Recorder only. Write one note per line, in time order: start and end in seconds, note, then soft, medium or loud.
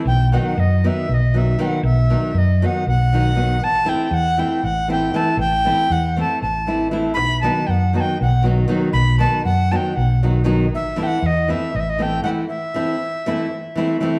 0.07 0.31 G5 loud
0.32 0.40 F#5 medium
0.38 0.47 G5 medium
0.45 0.61 F#5 medium
0.60 0.88 D#5 medium
0.87 1.11 E5 medium
1.11 1.39 D#5 medium
1.11 1.15 E5 medium
1.38 1.63 E5 medium
1.61 1.67 G5 medium
1.66 1.84 F#5 medium
1.84 2.40 E5 loud
2.38 2.67 D#5 medium
2.66 2.88 F#5 loud
2.88 3.65 F#5 loud
3.64 3.90 A5 loud
3.89 4.05 G5 loud
4.05 4.15 G5 medium
4.14 4.41 F#5 loud
4.39 4.66 G5 medium
4.64 4.90 F#5 loud
4.92 5.18 G5 loud
5.16 5.39 A5 loud
5.40 5.94 G5 loud
5.92 6.18 F#5 loud
6.20 6.41 A5 loud
6.42 6.87 A5 medium
7.14 7.40 B5 loud
7.41 7.68 A5 medium
7.67 7.94 F#5 medium
7.67 7.71 G5 medium
7.96 8.02 A5 medium
8.01 8.18 G5 medium
8.22 8.45 F#5 medium
8.93 9.18 B5 loud
9.19 9.43 A5 medium
9.45 9.73 F#5 medium
9.72 9.77 A5 medium
9.76 9.97 G5 medium
9.96 10.22 F#5 medium
10.75 11.05 E5 loud
11.03 11.28 F#5 loud
11.03 11.08 G5 loud
11.26 11.52 D#5 loud
11.50 11.77 E5 medium
11.76 11.81 D#5 medium
11.80 11.91 E5 medium
11.90 12.04 D#5 medium
12.02 12.23 G5 medium
12.23 12.29 F#5 loud
12.49 13.97 E5 loud